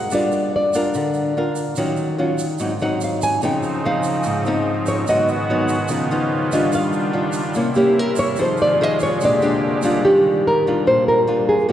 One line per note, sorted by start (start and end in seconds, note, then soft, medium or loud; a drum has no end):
0.00 0.11 F#5 loud
0.11 0.92 G3 medium
0.11 0.70 D4 medium
0.11 0.71 F4 medium
0.11 0.71 A#4 medium
0.11 0.52 D5 medium
0.11 shaker medium
0.32 shaker soft
0.56 1.12 D5 medium
0.73 1.33 D4 medium
0.73 1.33 F4 medium
0.73 1.33 A#4 medium
0.73 shaker medium
0.94 1.75 D3 medium
0.94 shaker medium
1.14 shaker soft
1.37 1.74 D4 medium
1.37 1.74 F4 medium
1.37 1.75 A#4 medium
1.56 shaker medium
1.76 2.58 D#3 medium
1.76 2.15 F#3 medium
1.76 2.15 C#4 soft
1.76 2.15 F4 medium
1.76 shaker medium
1.97 shaker soft
2.18 2.46 F#3 medium
2.18 2.46 C#4 medium
2.18 2.46 F4 medium
2.38 shaker medium
2.58 3.40 G#2 medium
2.58 2.72 F#3 medium
2.58 2.72 C4 medium
2.58 2.72 D#4 medium
2.58 shaker medium
2.79 3.39 F#3 medium
2.79 3.40 C4 medium
2.79 3.40 D#4 medium
2.79 3.01 F#5 medium
2.79 shaker soft
3.01 3.22 F5 medium
3.01 shaker medium
3.22 3.42 G#5 medium
3.22 shaker medium
3.42 5.06 C#3 medium
3.42 4.23 C#3 medium
3.42 5.06 F3 medium
3.42 3.80 F3 medium
3.42 5.06 C4 medium
3.42 3.80 C4 medium
3.42 5.06 D#4 medium
3.42 3.81 D#4 medium
3.42 3.82 G5 medium
3.42 shaker medium
3.63 shaker soft
3.85 4.43 F3 medium
3.85 4.43 C4 medium
3.85 4.43 D#4 medium
3.85 4.43 F5 medium
4.03 shaker medium
4.23 5.06 G#2 medium
4.23 shaker medium
4.45 5.05 F3 medium
4.45 5.05 C4 medium
4.45 5.05 D#4 medium
4.45 shaker soft
4.86 5.08 C#5 medium
4.86 shaker medium
5.06 5.89 G#2 medium
5.06 6.70 D#3 medium
5.06 5.34 F#3 medium
5.06 5.89 G#3 medium
5.06 6.71 B3 medium
5.06 5.35 B3 medium
5.06 5.35 D#4 medium
5.06 5.89 F#4 medium
5.06 5.28 D#5 medium
5.06 shaker medium
5.28 shaker soft
5.50 5.77 F#3 medium
5.50 5.77 B3 medium
5.50 5.77 D#4 medium
5.68 shaker medium
5.88 6.71 C#3 medium
5.88 6.07 F3 soft
5.88 6.08 B3 soft
5.88 6.72 C#4 medium
5.88 6.08 D#4 medium
5.88 7.53 F4 medium
5.88 shaker medium
6.11 6.49 F3 medium
6.11 6.49 B3 medium
6.11 6.50 D#4 medium
6.11 shaker soft
6.52 7.11 G3 medium
6.52 7.11 D4 medium
6.52 7.12 F4 medium
6.52 6.73 D#5 medium
6.52 shaker medium
6.72 7.53 D#3 medium
6.72 7.55 D#3 medium
6.72 7.55 G3 medium
6.72 7.55 D4 medium
6.72 6.87 F5 medium
6.72 shaker medium
6.93 shaker soft
7.13 7.41 G3 medium
7.13 7.42 D4 medium
7.13 7.42 F4 medium
7.32 shaker medium
7.54 8.36 C3 medium
7.54 10.01 C3 soft
7.54 8.37 A#3 medium
7.54 7.68 A#3 medium
7.54 7.68 C#4 medium
7.54 8.38 E4 medium
7.54 7.68 E4 medium
7.54 shaker medium
7.74 8.35 A#3 medium
7.74 8.35 C#4 medium
7.74 8.35 E4 medium
7.74 7.99 G4 medium
7.74 shaker soft
7.99 8.18 A#4 medium
8.16 8.38 C#5 loud
8.16 shaker medium
8.36 9.19 D#3 medium
8.36 9.19 F3 medium
8.36 10.01 G#3 medium
8.36 8.77 D#4 medium
8.36 9.19 F4 medium
8.36 8.77 G#4 medium
8.36 shaker medium
8.40 8.77 C5 medium
8.40 8.60 C5 medium
8.57 shaker soft
8.62 8.84 D5 medium
8.81 9.08 D#4 medium
8.81 9.08 G#4 medium
8.81 9.08 C5 medium
8.81 9.01 D#5 medium
9.00 9.22 C#5 medium
9.00 shaker medium
9.20 10.02 A#2 medium
9.20 10.02 D3 medium
9.20 9.39 G#3 medium
9.20 10.03 A#3 medium
9.20 9.39 D4 soft
9.20 10.02 G4 medium
9.20 9.39 G4 medium
9.20 shaker medium
9.25 9.61 D5 medium
9.41 9.80 G#3 medium
9.41 9.80 D4 medium
9.41 9.80 G4 medium
9.41 shaker soft
9.82 10.42 G3 medium
9.82 10.42 D4 medium
9.82 10.42 F4 medium
9.82 shaker medium
10.05 10.85 D#3 medium
10.05 10.47 G4 medium
10.47 10.87 A#4 medium
10.67 11.25 G3 medium
10.67 11.25 D4 medium
10.67 11.25 F4 medium
10.87 11.67 A#2 medium
10.87 11.06 C5 medium
11.08 11.48 A#4 medium
11.27 11.54 G3 medium
11.27 11.54 D4 medium
11.27 11.55 F4 medium
11.49 11.70 G#4 medium
11.69 11.72 C3 medium
11.69 11.72 A#3 medium